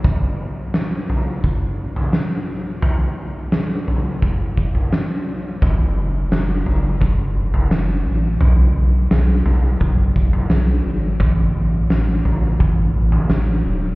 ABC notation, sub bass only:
X:1
M:4/4
L:1/8
Q:1/4=86
K:F#dor
V:1 name="Sub bass" clef=bass
z8 | z8 | F,,, F,,, F,,, F,,, F,,, F,,, F,,, A,,, | B,,, B,,, B,,, B,,, B,,, B,,, B,,, G,,, |
A,,, A,,, A,,, A,,, A,,, A,,, A,,, D,,, |]